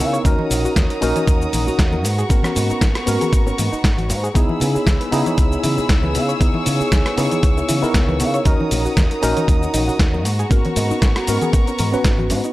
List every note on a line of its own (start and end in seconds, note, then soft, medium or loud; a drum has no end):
0.00 0.17 C#3 loud
0.00 0.22 B3 medium
0.00 0.22 D#4 medium
0.00 0.23 E4 medium
0.00 0.21 G#4 medium
0.00 0.23 A#4 loud
0.00 2.01 C#5 medium
0.00 0.23 C#6 medium
0.00 0.21 E6 medium
0.00 open hi-hat medium
0.00 cabasa medium
0.13 0.16 C#5 loud
0.13 closed hi-hat soft
0.13 cabasa soft
0.24 0.34 D#2 loud
0.24 0.28 A#3 medium
0.24 0.99 C#4 medium
0.24 0.99 D#4 medium
0.24 4.31 F#4 medium
0.24 1.00 F#4 medium
0.24 1.00 A#4 loud
0.24 2.03 A#5 medium
0.24 2.03 D#6 medium
0.24 kick loud
0.24 closed hi-hat medium
0.24 cabasa medium
0.24 cabasa soft
0.39 0.46 D#4 medium
0.39 high conga medium
0.50 0.64 A#1 medium
0.50 0.56 A#3 medium
0.50 open hi-hat loud
0.50 low conga medium
0.50 cabasa loud
0.50 cabasa medium
0.65 0.69 F#4 medium
0.65 muted fingered electric bass stroke soft
0.65 cabasa soft
0.76 0.85 D#2 medium
0.76 0.80 A#3 medium
0.76 kick loud
0.76 snare loud
0.76 closed hi-hat medium
0.76 high conga medium
0.76 cabasa medium
0.76 cabasa soft
0.90 0.97 A#4 medium
0.90 closed hi-hat medium
0.90 cabasa soft
1.01 1.11 A#1 medium
1.01 1.10 A#3 medium
1.01 2.03 C#4 loud
1.01 2.03 D#4 medium
1.01 2.04 F#4 medium
1.01 2.04 A#4 loud
1.01 open hi-hat medium
1.01 high bongo medium
1.01 cabasa loud
1.01 cabasa medium
1.16 1.23 C#5 medium
1.16 closed hi-hat medium
1.16 high conga medium
1.16 cabasa soft
1.27 1.45 D#2 medium
1.27 1.33 A#3 medium
1.27 kick loud
1.27 closed hi-hat medium
1.27 cabasa soft
1.41 1.46 D#4 medium
1.41 cabasa soft
1.53 1.67 A#1 medium
1.53 1.56 A#3 loud
1.53 open hi-hat loud
1.53 high conga medium
1.53 cabasa medium
1.67 1.72 F#4 medium
1.67 muted fingered electric bass stroke soft
1.67 low conga medium
1.67 cabasa soft
1.79 2.05 D#2 medium
1.79 1.84 A#3 medium
1.79 kick loud
1.79 snare loud
1.79 closed hi-hat medium
1.79 cabasa medium
1.79 cabasa soft
1.92 2.00 A#4 medium
1.92 high conga medium
1.92 cabasa soft
2.04 2.22 G#2 medium
2.04 2.13 A#3 medium
2.04 4.33 B3 medium
2.04 4.33 A#5 medium
2.04 4.33 C#6 medium
2.04 open hi-hat medium
2.04 cabasa medium
2.17 2.21 G#4 loud
2.17 closed hi-hat soft
2.17 cabasa soft
2.29 2.39 G#1 loud
2.29 2.33 A#3 medium
2.29 3.04 B3 medium
2.29 3.04 C#4 medium
2.29 3.05 F#4 medium
2.29 3.05 A#4 medium
2.29 kick loud
2.29 closed hi-hat medium
2.29 cabasa medium
2.29 cabasa soft
2.43 2.51 C#4 medium
2.43 cross-stick medium
2.43 closed hi-hat soft
2.43 high conga loud
2.43 cabasa soft
2.55 2.70 G#2 medium
2.55 2.61 A#3 medium
2.55 open hi-hat loud
2.55 low conga medium
2.55 cabasa medium
2.69 2.74 D#4 medium
2.69 muted fingered electric bass stroke soft
2.69 closed hi-hat soft
2.69 cabasa soft
2.81 2.91 G#1 medium
2.81 2.85 A#3 medium
2.81 kick loud
2.81 snare loud
2.81 closed hi-hat medium
2.81 high conga medium
2.81 cabasa medium
2.81 cabasa soft
2.95 3.02 F#4 medium
2.95 cross-stick medium
2.95 closed hi-hat medium
2.95 cabasa soft
3.06 3.16 G#2 medium
3.06 3.15 A#3 medium
3.06 3.69 B3 medium
3.06 3.69 C#4 medium
3.06 3.69 F#4 medium
3.06 3.70 A#4 medium
3.06 open hi-hat medium
3.06 high bongo medium
3.06 cabasa medium
3.21 3.28 G#4 medium
3.21 closed hi-hat medium
3.21 high conga medium
3.21 cabasa soft
3.33 3.50 G#1 medium
3.33 3.38 A#3 medium
3.33 kick loud
3.33 closed hi-hat medium
3.33 cabasa medium
3.33 cabasa soft
3.46 3.51 C#4 medium
3.46 high bongo medium
3.46 cabasa soft
3.58 3.68 G#2 medium
3.58 3.62 A#3 loud
3.58 open hi-hat loud
3.58 high conga medium
3.58 cabasa medium
3.72 3.77 D#4 medium
3.72 muted fingered electric bass stroke soft
3.72 cabasa soft
3.84 4.11 G#1 medium
3.84 3.89 A#3 medium
3.84 kick loud
3.84 snare loud
3.84 closed hi-hat medium
3.84 cabasa soft
3.84 cabasa medium
3.98 4.05 F#4 medium
3.98 closed hi-hat soft
3.98 high conga medium
3.98 cabasa soft
4.09 4.27 G#2 medium
4.09 4.18 A#3 medium
4.09 open hi-hat medium
4.09 high bongo medium
4.09 cabasa loud
4.09 cabasa medium
4.23 4.26 G#4 loud
4.23 closed hi-hat soft
4.23 cabasa soft
4.35 4.44 C#2 medium
4.35 5.09 B3 medium
4.35 4.39 B3 medium
4.35 5.09 D#4 medium
4.35 5.10 E4 medium
4.35 8.42 G#4 medium
4.35 5.10 G#4 loud
4.35 10.21 C#5 medium
4.35 6.39 B5 medium
4.35 8.42 E6 medium
4.35 kick loud
4.35 closed hi-hat medium
4.35 cabasa medium
4.35 cabasa soft
4.49 4.56 E4 medium
4.49 high conga medium
4.60 4.75 C#3 medium
4.60 4.66 B3 medium
4.60 open hi-hat loud
4.60 low conga medium
4.60 cabasa medium
4.75 4.79 G#4 medium
4.75 muted fingered electric bass stroke soft
4.75 cabasa soft
4.86 4.96 C#2 medium
4.86 4.90 B3 medium
4.86 kick loud
4.86 snare loud
4.86 closed hi-hat medium
4.86 high conga medium
4.86 cabasa medium
4.86 cabasa soft
5.00 5.07 B4 medium
5.00 closed hi-hat medium
5.00 cabasa soft
5.11 5.21 C#3 medium
5.11 6.37 B3 loud
5.11 5.21 B3 medium
5.11 6.38 D#4 medium
5.11 6.38 E4 medium
5.11 6.38 G#4 loud
5.11 open hi-hat loud
5.11 high bongo medium
5.11 cabasa medium
5.26 5.33 C#5 medium
5.26 closed hi-hat medium
5.26 high conga loud
5.26 cabasa soft
5.38 5.55 C#2 medium
5.38 5.43 B3 medium
5.38 kick loud
5.38 closed hi-hat medium
5.38 cabasa soft
5.38 cabasa medium
5.52 5.57 E4 medium
5.52 cabasa soft
5.63 5.77 C#3 medium
5.63 5.69 E4 loud
5.63 open hi-hat loud
5.63 high conga medium
5.63 cabasa medium
5.63 cabasa loud
5.77 5.82 G#4 medium
5.77 muted fingered electric bass stroke soft
5.77 low conga medium
5.77 cabasa soft
5.89 6.16 C#2 medium
5.89 5.95 B3 medium
5.89 kick loud
5.89 snare loud
5.89 closed hi-hat medium
5.89 cabasa medium
5.89 cabasa soft
6.03 6.10 B4 medium
6.03 high conga medium
6.03 cabasa soft
6.14 6.32 C#3 loud
6.14 6.23 B3 medium
6.14 open hi-hat medium
6.14 cabasa medium
6.29 6.32 C#5 loud
6.29 closed hi-hat soft
6.29 cabasa soft
6.40 6.50 C#2 loud
6.40 7.14 B3 medium
6.40 6.44 B3 medium
6.40 7.15 D#4 medium
6.40 7.15 E4 medium
6.40 7.15 G#4 medium
6.40 8.43 C#6 medium
6.40 kick loud
6.40 closed hi-hat medium
6.40 cabasa medium
6.40 cabasa soft
6.54 6.61 E4 medium
6.54 high conga loud
6.66 6.80 C#3 medium
6.66 6.72 B3 medium
6.66 open hi-hat loud
6.66 low conga medium
6.66 cabasa medium
6.80 6.85 G#4 medium
6.80 muted fingered electric bass stroke soft
6.80 cabasa soft
6.91 7.01 C#2 medium
6.91 6.95 B3 medium
6.91 kick loud
6.91 snare loud
6.91 closed hi-hat medium
6.91 high conga medium
6.91 cabasa soft
7.05 7.12 B4 medium
7.05 cross-stick medium
7.05 closed hi-hat medium
7.05 cabasa soft
7.16 7.27 C#3 medium
7.16 7.79 B3 medium
7.16 7.26 B3 medium
7.16 7.79 D#4 medium
7.16 7.80 E4 medium
7.16 7.80 G#4 medium
7.16 open hi-hat loud
7.16 high bongo medium
7.16 cabasa medium
7.31 7.38 C#5 medium
7.31 closed hi-hat medium
7.31 high conga medium
7.31 cabasa soft
7.43 7.61 C#2 medium
7.43 7.48 B3 medium
7.43 kick loud
7.43 closed hi-hat medium
7.43 cabasa soft
7.57 7.62 E4 medium
7.57 high bongo medium
7.57 cabasa soft
7.68 7.82 C#3 medium
7.68 7.74 E4 loud
7.68 open hi-hat loud
7.68 high conga medium
7.68 cabasa medium
7.82 8.42 B3 medium
7.82 8.43 D#4 medium
7.82 8.43 E4 medium
7.82 7.87 G#4 medium
7.82 8.43 A#4 medium
7.82 muted fingered electric bass stroke soft
7.82 cabasa soft
7.94 8.22 C#2 medium
7.94 8.00 B3 medium
7.94 kick loud
7.94 snare loud
7.94 closed hi-hat medium
7.94 cabasa medium
7.94 cabasa soft
8.08 8.15 B4 medium
8.08 high conga loud
8.08 cabasa soft
8.20 8.38 C#3 loud
8.20 8.28 B3 medium
8.20 open hi-hat medium
8.20 high bongo medium
8.20 cabasa medium
8.34 8.37 C#5 loud
8.34 closed hi-hat soft
8.34 cabasa soft
8.45 8.55 D#2 loud
8.45 8.49 A#3 medium
8.45 9.20 C#4 medium
8.45 9.20 D#4 medium
8.45 12.52 F#4 medium
8.45 9.20 F#4 medium
8.45 9.21 A#4 loud
8.45 10.23 A#5 medium
8.45 10.23 D#6 medium
8.45 kick loud
8.45 closed hi-hat medium
8.45 cabasa medium
8.45 cabasa soft
8.60 8.66 D#4 medium
8.60 high conga medium
8.71 8.85 A#1 medium
8.71 8.77 A#3 medium
8.71 open hi-hat loud
8.71 low conga medium
8.71 cabasa medium
8.85 8.90 F#4 medium
8.85 muted fingered electric bass stroke soft
8.85 cabasa soft
8.97 9.06 D#2 medium
8.97 9.00 A#3 medium
8.97 kick loud
8.97 snare loud
8.97 closed hi-hat medium
8.97 high conga medium
8.97 cabasa soft
9.11 9.18 A#4 medium
9.11 closed hi-hat medium
9.11 cabasa soft
9.22 9.32 A#1 medium
9.22 9.31 A#3 medium
9.22 10.23 C#4 loud
9.22 10.24 D#4 loud
9.22 10.24 F#4 medium
9.22 10.24 A#4 loud
9.22 open hi-hat loud
9.22 high bongo medium
9.22 cabasa medium
9.36 9.43 C#5 medium
9.36 closed hi-hat medium
9.36 high conga medium
9.36 cabasa soft
9.48 9.66 D#2 medium
9.48 9.54 A#3 medium
9.48 kick loud
9.48 closed hi-hat medium
9.48 cabasa medium
9.48 cabasa soft
9.62 9.67 D#4 medium
9.62 cabasa soft
9.74 9.87 A#1 medium
9.74 9.79 D#4 loud
9.74 open hi-hat loud
9.74 high conga medium
9.74 cabasa medium
9.88 9.92 F#4 medium
9.88 muted fingered electric bass stroke soft
9.88 low conga medium
9.88 cabasa soft
9.99 10.25 D#2 loud
9.99 10.05 A#3 medium
9.99 kick loud
9.99 snare loud
9.99 closed hi-hat medium
9.99 cabasa soft
9.99 cabasa medium
10.14 10.20 A#4 medium
10.14 high conga medium
10.14 cabasa soft
10.25 10.42 G#2 loud
10.25 10.33 A#3 medium
10.25 12.53 B3 medium
10.25 12.53 A#5 medium
10.25 12.53 C#6 medium
10.25 open hi-hat loud
10.25 cabasa medium
10.39 10.42 G#4 loud
10.39 closed hi-hat soft
10.39 cabasa soft
10.50 10.60 G#1 loud
10.50 10.54 A#3 medium
10.50 11.24 B3 medium
10.50 11.25 C#4 medium
10.50 11.25 F#4 medium
10.50 11.25 A#4 medium
10.50 kick loud
10.50 closed hi-hat medium
10.50 cabasa medium
10.50 cabasa soft
10.65 10.72 C#4 medium
10.65 closed hi-hat soft
10.65 high conga loud
10.76 10.90 G#2 medium
10.76 10.82 A#3 medium
10.76 open hi-hat loud
10.76 low conga medium
10.76 cabasa medium
10.90 10.95 D#4 medium
10.90 muted fingered electric bass stroke soft
10.90 cabasa soft
11.02 11.11 G#1 medium
11.02 11.05 A#3 medium
11.02 kick loud
11.02 snare loud
11.02 closed hi-hat medium
11.02 high conga medium
11.02 cabasa medium
11.02 cabasa soft
11.16 11.23 F#4 medium
11.16 cross-stick medium
11.16 closed hi-hat medium
11.16 cabasa soft
11.27 11.37 G#2 medium
11.27 11.36 A#3 medium
11.27 11.89 B3 medium
11.27 11.90 C#4 medium
11.27 11.90 F#4 medium
11.27 11.90 A#4 medium
11.27 open hi-hat medium
11.27 high bongo medium
11.27 cabasa medium
11.41 11.49 G#4 medium
11.41 closed hi-hat medium
11.41 high conga loud
11.41 cabasa soft
11.53 11.62 G#1 medium
11.53 11.59 A#3 medium
11.53 kick loud
11.53 closed hi-hat medium
11.53 cabasa soft
11.67 11.72 C#4 medium
11.67 closed hi-hat soft
11.67 high bongo medium
11.67 cabasa soft
11.78 11.93 G#2 medium
11.78 11.82 A#4 loud
11.78 open hi-hat loud
11.78 high conga medium
11.78 cabasa loud
11.78 cabasa medium
11.92 12.53 B3 medium
11.92 12.53 C#4 medium
11.92 11.96 C#4 medium
11.92 12.53 F#4 medium
11.92 12.53 B4 medium
11.92 muted fingered electric bass stroke soft
11.92 cabasa soft
12.04 12.31 G#1 medium
12.04 12.13 A#3 medium
12.04 kick loud
12.04 snare loud
12.04 closed hi-hat medium
12.04 cabasa soft
12.18 12.23 F#4 medium
12.18 high conga medium
12.18 cabasa soft
12.30 12.39 G#2 medium
12.30 12.39 C#4 medium
12.30 open hi-hat loud
12.30 high bongo medium
12.30 cabasa medium
12.44 12.47 D#4 medium
12.44 closed hi-hat soft
12.44 cabasa soft